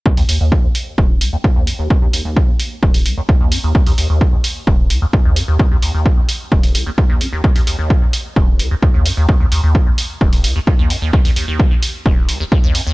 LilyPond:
<<
  \new Staff \with { instrumentName = "Acid bass" } { \clef bass \time 4/4 \key ees \minor \tempo 4 = 130 ees,16 ees,16 ees,16 ees,16 ges16 ees,16 r8 ees,,8 des,16 ees,16 ees,16 ees,16 ges,16 ees,16 | r16 ees,16 ees,16 ees,16 ges16 ees,16 r8 ees,,8 des,16 ees,16 ees,16 ees,16 ges,16 ees,16 | r16 ees,16 ees,16 ees,16 ges16 ees,16 r8 ees,,8 des,16 ees,16 ees,16 ees,16 ges,16 ees,16 | r16 ees,16 ees,16 ees,16 ges16 ees,16 r8 ees,,8 des,16 ees,16 ees,16 ees,16 ges,16 ees,16 |
r16 ees,16 ees,16 ees,16 ges16 ees,16 r8 ees,,8 des,16 ees,16 ees,16 ees,16 ges,16 ees,16 | r16 ees,16 ees,16 ees,16 ges16 ees,16 r8 ees,,8 des,16 ees,16 ees,16 ees,16 ges,16 ees,16 | r16 ees,16 ees,16 ees,16 ges16 ees,16 r8 ees,,8 des,16 ees,16 ees,16 ees,16 ges,16 ees,16 | }
  \new DrumStaff \with { instrumentName = "Drums" } \drummode { \time 4/4 bd16 hho16 hho8 bd8 hho8 bd8 hho8 bd8 hho8 | bd8 hho8 bd8 hho8 bd16 hho16 hho8 bd8 hho8 | bd16 hho16 hho8 bd8 hho8 bd8 hho8 bd8 hho8 | bd8 hho8 bd8 hho8 bd16 hho16 hho8 bd8 hho8 |
bd16 hho16 hho8 bd8 hho8 bd8 hho8 bd8 hho8 | bd8 hho8 bd8 hho8 bd16 hho16 hho8 bd8 hho8 | bd16 hho16 hho8 bd8 hho8 bd8 hho8 bd8 hho8 | }
>>